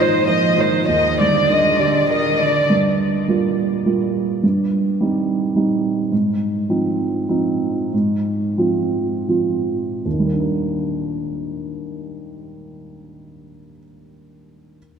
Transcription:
0.00 0.84 G#2 soft
0.00 0.26 D#3 soft
0.00 0.91 F3 soft
0.00 0.88 G#3 medium
0.00 0.15 D#4 soft
0.00 0.45 F4 soft
0.00 0.88 F4 medium
0.00 0.27 C5 soft
0.00 0.88 C5 medium
0.26 0.59 F3 soft
0.26 0.76 C5 soft
0.26 0.56 D#5 soft
0.58 0.88 D#3 soft
0.58 0.88 D#4 soft
0.58 0.89 C5 soft
0.88 2.65 D#2 soft
0.88 2.69 D#3 soft
0.88 1.21 D#3 soft
0.88 2.70 G3 medium
0.88 2.70 D5 medium
0.88 1.17 D#5 soft
1.19 1.52 D3 soft
1.19 1.68 G3 soft
1.19 1.50 D5 soft
1.49 1.81 D#3 soft
1.49 1.97 D4 soft
1.49 1.79 D#5 soft
1.79 2.09 D3 soft
1.79 2.27 G4 soft
1.79 2.09 D5 soft
2.09 2.42 D#3 soft
2.09 2.58 A#4 soft
2.09 2.37 D#5 soft
2.39 2.70 D3 soft
2.39 2.69 D4 soft
2.39 2.69 D5 soft
2.70 3.26 G2 soft
3.28 3.81 G3 soft
3.28 3.81 A#3 soft
3.28 3.82 F4 soft
3.86 4.39 G3 soft
3.86 4.39 A#3 soft
3.86 4.39 F4 soft
4.43 4.98 G2 soft
5.01 5.52 G3 soft
5.01 5.52 C4 soft
5.01 5.53 D#4 soft
5.56 6.08 G3 soft
5.56 6.08 C4 soft
5.56 6.08 D#4 soft
6.12 6.68 G#2 soft
6.69 7.25 F3 soft
6.69 7.25 C4 soft
6.69 7.25 D#4 soft
7.29 7.88 F3 soft
7.29 7.88 C4 soft
7.29 7.89 D#4 soft
7.93 8.55 G#2 soft
8.58 9.23 F3 soft
8.58 9.24 C4 soft
8.58 9.24 F4 soft
9.28 10.01 F3 soft
9.28 10.01 C4 soft
9.28 10.02 F4 soft
10.05 13.50 D#2 soft
10.12 13.57 D#3 soft
10.19 13.64 G3 soft
10.27 13.71 A#3 soft
10.33 13.78 D4 soft
10.40 13.85 A#4 soft

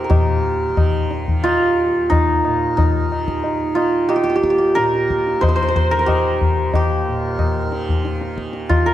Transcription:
0.00 1.86 D#2 soft
0.00 0.09 A#2 medium
0.00 0.69 D#3 medium
0.00 0.44 F4 medium
0.00 1.39 C5 medium
0.04 2.87 A#4 soft
0.09 2.46 A#2 medium
0.09 3.25 G4 medium
0.09 tabla tin loud
0.09 tabla ge medium
0.69 1.28 D#3 medium
0.77 tabla na medium
0.77 tabla ge medium
1.11 tabla te medium
1.28 3.04 D#3 medium
1.28 tabla ge soft
1.44 3.75 F4 medium
1.44 tabla na medium
1.86 4.22 D#2 medium
2.10 2.77 D#4 medium
2.10 tabla tin medium
2.10 tabla ge medium
2.45 4.77 A#2 medium
2.45 tabla na medium
2.77 6.38 D#4 medium
2.77 tabla tin medium
2.77 tabla ge medium
3.05 3.63 D#3 medium
3.12 tabla na medium
3.28 tabla ke medium
3.44 tabla tin medium
3.63 5.37 D#3 medium
3.75 7.11 F4 medium
3.75 tabla na medium
4.09 4.15 G4 medium
4.09 tabla na medium
4.16 4.23 G4 medium
4.23 6.52 D#2 medium
4.23 4.29 G4 medium
4.30 4.35 G4 medium
4.36 4.43 G4 medium
4.43 4.50 G4 soft
4.43 tabla ke medium
4.50 4.58 G4 medium
4.58 6.06 G4 medium
4.75 7.08 A#2 medium
4.75 5.91 A#4 medium
4.75 tabla te medium
4.94 tabla te medium
5.10 tabla ke medium
5.27 tabla te medium
5.37 5.93 D#3 soft
5.41 5.48 C5 medium
5.41 tabla na medium
5.41 tabla ge medium
5.48 5.55 C5 medium
5.56 5.62 C5 medium
5.63 5.68 C5 medium
5.68 5.76 C5 medium
5.76 8.41 C5 medium
5.76 tabla ge soft
5.91 7.65 D#3 medium
5.91 5.99 A#4 medium
5.99 8.82 A#4 medium
6.06 6.75 G4 medium
6.06 tabla na medium
6.06 tabla ge medium
6.41 tabla ge medium
6.52 8.82 D#2 medium
6.74 8.94 G4 medium
6.74 tabla tin loud
6.74 tabla ge medium
7.08 8.94 A#2 medium
7.39 tabla na medium
7.39 tabla ge medium
7.65 8.24 D#3 medium
7.72 tabla te medium
7.89 tabla ge medium
8.05 tabla te medium
8.21 8.94 D#3 medium
8.21 tabla te medium
8.38 tabla ke medium
8.53 tabla te medium
8.69 8.94 F4 medium
8.69 tabla tin medium
8.69 tabla ge medium
8.82 8.94 D#2 medium
8.82 8.94 A#4 medium

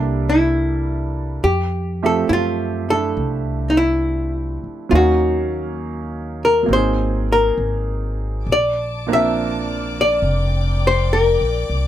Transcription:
0.00 1.38 C2 medium
0.00 1.41 G3 soft
0.00 1.42 A#3 soft
0.00 1.42 D4 soft
0.00 1.42 E4 soft
0.00 0.29 G4 medium
0.00 1.42 A4 soft
0.29 1.43 E4 medium
1.44 2.26 F2 medium
1.44 2.04 G4 medium
2.02 4.92 F3 soft
2.02 2.87 A3 soft
2.02 4.92 C4 soft
2.02 4.92 G4 soft
2.02 2.28 A4 medium
2.02 4.92 E5 soft
2.29 3.12 F#2 medium
2.29 2.31 E4 medium
2.29 2.92 F4 medium
2.88 4.92 A3 soft
2.88 4.93 D4 soft
2.88 4.94 E4 soft
2.88 3.70 A4 medium
3.17 4.60 C2 medium
3.70 3.78 D#4 soft
3.77 4.90 E4 medium
4.64 muted upright bass stroke soft
4.89 6.65 D#2 medium
4.89 6.61 F#3 soft
4.89 6.65 A#3 soft
4.89 6.68 C#4 soft
4.89 6.69 D#4 soft
4.89 4.93 F4 medium
4.94 6.46 F#4 medium
4.94 6.69 F5 soft
6.45 6.71 A#4 medium
6.63 8.44 F#3 soft
6.63 8.46 A#3 soft
6.68 7.54 G#1 medium
6.68 8.47 C4 soft
6.68 8.48 D#4 soft
6.73 8.50 G#4 soft
6.73 7.28 C5 medium
7.32 8.52 A#4 medium
7.58 8.43 G#1 medium
8.47 10.19 A#1 medium
8.47 11.87 D5 soft
8.47 10.22 A5 soft
8.47 11.87 D6 medium
8.52 9.12 D5 medium
9.07 11.87 F3 soft
9.07 11.87 A#3 soft
9.07 11.87 C4 soft
9.07 11.87 D4 soft
9.07 11.87 A#4 soft
9.13 10.01 E5 medium
10.01 10.87 D5 medium
10.22 11.36 F1 medium
10.22 11.87 G5 soft
10.87 11.14 C5 medium
11.13 11.82 A#4 medium
11.41 11.68 A#1 soft
11.70 11.87 C2 medium

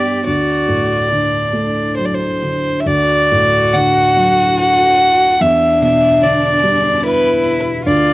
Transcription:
0.00 0.23 G2 medium
0.00 0.29 D3 soft
0.00 0.30 B3 soft
0.00 0.25 D4 soft
0.00 0.23 G4 soft
0.00 0.26 G4 medium
0.00 0.25 D5 medium
0.26 2.82 D2 soft
0.26 1.12 F#4 medium
0.26 1.94 D5 medium
0.68 2.38 A2 soft
1.10 2.41 D3 soft
1.10 2.42 D4 soft
1.53 2.82 A3 soft
1.97 2.84 F#3 soft
1.97 2.07 C5 medium
2.05 2.15 D5 soft
2.14 2.82 C5 medium
2.42 2.85 D3 soft
2.80 2.88 E5 soft
2.86 5.36 D2 medium
2.86 5.42 F#4 medium
2.86 3.75 D5 medium
3.32 4.96 A2 soft
3.73 5.36 D3 soft
3.73 4.58 F#5 medium
4.16 5.36 F#3 soft
4.59 5.42 F#5 loud
5.40 7.81 E2 medium
5.40 7.05 D4 medium
5.40 5.81 E5 medium
5.81 7.41 B2 soft
5.81 6.25 E5 medium
6.22 7.81 D3 medium
6.22 7.04 D5 medium
6.63 7.81 G3 medium
7.03 7.84 E4 medium
7.03 7.61 B4 medium
7.86 8.13 D2 medium
7.86 8.13 F4 loud
7.86 8.13 D5 loud

